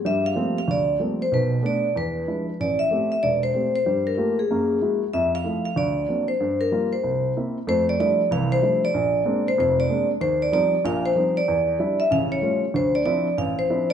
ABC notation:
X:1
M:4/4
L:1/8
Q:"Swing" 1/4=189
K:F
V:1 name="Vibraphone"
e f2 f d2 z c | =B2 d2 B3 z | d e2 e d c2 c- | c B2 _A4 z |
e f2 f d3 c- | c B2 c3 z2 | c d d2 f c2 d- | d3 c c d2 z |
c d d2 f c2 d- | d3 e f ^c2 z | c d d2 f c2 z |]
V:2 name="Upright piano"
[G,,G,]2 [F,G,A,B,C] z D,,2 [F,G,A,B,C] z | [=B,,,=B,,]2 [A,=B,D] z E,,2 [F,^G,DE] z | A,,,2 [A,CG] z E,,,2 [A,CG] z | [G,,G,]2 [A,B,FG] z [_G,,B,]2 [_A,B,_F_G] z |
F,,2 [F,A,E] z D,,2 [^F,^A,CD] z | G,,2 [G,B,F] z C,,2 [B,CE] z | [F,,A,]2 [F,G,A,DE] z [C,,E,]2 [F,G,A,DE] z | B,,,2 [_A,B,CD] z [F,,,F,,]2 [A,B,CD] z |
_E,,2 [F,G,C_E] z [B,,,B,,]2 [F,G,CE] z | E,,2 [G,DE] z [A,,,^C,]2 [G,A,^CF] z | [D,,D,]2 [F,CDE] z A,,,2 [F,CDE] z |]